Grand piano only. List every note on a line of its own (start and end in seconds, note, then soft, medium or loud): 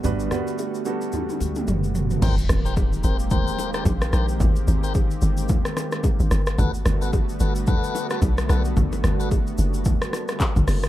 0.00 0.03 G3 medium
0.00 0.26 G3 medium
0.00 0.04 B3 medium
0.00 0.27 B3 medium
0.00 0.04 D4 medium
0.00 0.27 D4 medium
0.00 0.04 F#4 medium
0.00 0.86 A4 medium
0.00 0.05 B4 medium
0.04 0.27 F#4 medium
0.04 0.27 B4 medium
0.31 0.76 G3 medium
0.31 0.77 B3 medium
0.31 0.77 D4 medium
0.31 0.77 F#4 medium
0.31 0.77 B4 medium
0.85 1.74 G3 medium
0.85 1.74 B3 medium
0.85 1.74 D4 medium
0.85 1.74 F#4 medium
0.85 1.74 A4 medium